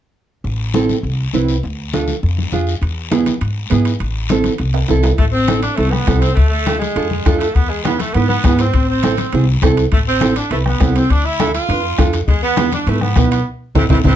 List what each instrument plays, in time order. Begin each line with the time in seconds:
0.44 upright bass A1, high conga, long guiro
0.74 nylon-string guitar C4 E4 A4, high conga, short guiro
0.89 high conga, short guiro
1.03 upright bass C2, high conga, long guiro
1.33 upright bass C2, nylon-string guitar C4 E4 B4, high conga, short guiro
1.48 short guiro
1.63 upright bass D2, high conga, long guiro
1.93 nylon-string guitar D4 F4 A4, high conga, short guiro
2.08 high conga, short guiro
2.23 upright bass F2, high conga, long guiro
2.38 high conga
2.52 upright bass F2, nylon-string guitar D4 F4 G#4, high conga, short guiro
2.67 short guiro
2.82 upright bass E2, high conga, high timbale, long guiro
3.11 nylon-string guitar B3 E4 G#4, high conga, high timbale, short guiro
3.26 high conga, high timbale, short guiro
3.41 upright bass G#2, high conga, high timbale, long guiro
3.70 upright bass G#2, nylon-string guitar B3 E4 G#4, high conga, high timbale, short guiro
3.85 high timbale, short guiro
3.99 upright bass A1, high conga, high timbale, long guiro
4.29 nylon-string guitar C4 E4 A4, high conga, high timbale, short guiro
4.44 high conga, high timbale, short guiro
4.58 upright bass C2, high conga, high timbale, long guiro
4.74 high timbale
4.88 upright bass C2, nylon-string guitar C4 E4 A4, high conga, low timbale, short guiro
5.03 low timbale, short guiro
5.18 upright bass A1, saxophone section A3, bombo low, high conga, high timbale, long guiro
5.32 saxophone section C4
5.48 nylon-string guitar C4 E4 A4, bombo rim, high conga, high timbale, short guiro
5.62 saxophone section D4, high timbale, short guiro
5.76 upright bass C2, saxophone section A3, nylon-string guitar C4 E4 A4, high conga, high timbale, long guiro
5.90 saxophone section B3, bombo rim, high conga
6.07 upright bass C2, nylon-string guitar C4 E4 A4, bombo low, bombo rim, high conga, high timbale, low timbale, short guiro
6.20 saxophone section C4, high timbale, short guiro
6.35 upright bass D2, saxophone section A3, bombo low, high conga, high timbale, long guiro
6.49 saxophone section A3
6.66 nylon-string guitar D4 F4 A4, bombo rim, high conga, high timbale, short guiro
6.79 saxophone section G#3, high conga, high timbale, short guiro
6.96 upright bass F2, nylon-string guitar D4 F4 A4, high conga, high timbale, long guiro
7.11 high conga
7.26 upright bass F2, nylon-string guitar D4 F4 A4, bombo low, bombo rim, high conga, high timbale, low timbale, short guiro
7.38 saxophone section A3, high timbale, short guiro
7.54 upright bass E2, saxophone section B3, bombo low, high conga, high timbale, long guiro
7.69 saxophone section G#3
7.84 saxophone section B3, nylon-string guitar B3 E4 G#4, bombo rim, high conga, high timbale, short guiro
7.99 saxophone section A3, high conga, high timbale, short guiro
8.13 upright bass G#2, saxophone section B3, nylon-string guitar B3 E4 B4, high conga, high timbale, long guiro
8.28 saxophone section B3, high conga
8.44 upright bass G#2, nylon-string guitar B3 E4 G#4, bombo low, bombo rim, high conga, high timbale, low timbale, short guiro
8.59 saxophone section C4, high timbale, short guiro
8.73 upright bass A1, bombo low, high conga, high timbale, long guiro
8.89 saxophone section C4
9.03 nylon-string guitar C4 E4 A4, bombo rim, high conga, high timbale, short guiro
9.17 high conga, high timbale, short guiro
9.32 upright bass C2, nylon-string guitar C4 E4 G#4, high conga, high timbale, long guiro
9.62 upright bass C2, nylon-string guitar C4 E4 A4, bombo low, bombo rim, high conga, high timbale, low timbale, short guiro
9.77 high timbale, short guiro
9.92 upright bass A1, saxophone section A3, bombo low, high conga, high timbale, long guiro
10.08 saxophone section C4
10.21 nylon-string guitar C4 E4 A4, bombo rim, high conga, high timbale, short guiro
10.36 saxophone section D4, high timbale, short guiro
10.51 upright bass C2, saxophone section A3, nylon-string guitar C4 E4 B4, high conga, high timbale, long guiro
10.66 saxophone section B3, bombo rim, high conga
10.80 upright bass C2, nylon-string guitar C4 E4 A4, bombo low, bombo rim, high conga, high timbale, low timbale, short guiro
10.96 saxophone section C4, high timbale, short guiro
11.10 upright bass D2, saxophone section D4, bombo low, high conga, high timbale, long guiro
11.25 saxophone section E4
11.39 nylon-string guitar D4 F4 A4, bombo rim, high conga, high timbale, short guiro
11.54 saxophone section F4, high timbale, short guiro
11.69 upright bass F2, nylon-string guitar D4 F4 B4, high conga, high timbale, long guiro
11.98 upright bass F2, nylon-string guitar D4 F4 A4, bombo low, bombo rim, high conga, high timbale, low timbale, short guiro
12.13 high timbale, short guiro
12.28 upright bass E2, saxophone section G#3, bombo low, high conga, high timbale, long guiro
12.42 saxophone section B3
12.57 nylon-string guitar B3 E4 G#4, bombo rim, high conga, high timbale, short guiro
12.72 saxophone section D4, high conga, high timbale, short guiro
12.87 upright bass G#2, saxophone section A3, nylon-string guitar B3 E4 B4, high conga, high timbale, long guiro
13.01 saxophone section B3, bombo rim, high conga
13.16 upright bass B1, nylon-string guitar B3 E4 B4, bombo low, bombo rim, high conga, high timbale, short guiro
13.30 saxophone section B3, high timbale, short guiro
13.75 upright bass A1, saxophone section E3 A3 C4, nylon-string guitar C4 E4 A4, bombo low, low conga, high timbale, long guiro
13.89 upright bass A1, saxophone section E3 A3 C4, nylon-string guitar C4 E4 A4, bombo low, low conga, high timbale, long guiro
14.04 upright bass A1, saxophone section E3 A3 C4, nylon-string guitar C4 E4 A4, bombo low, low conga, high timbale, long guiro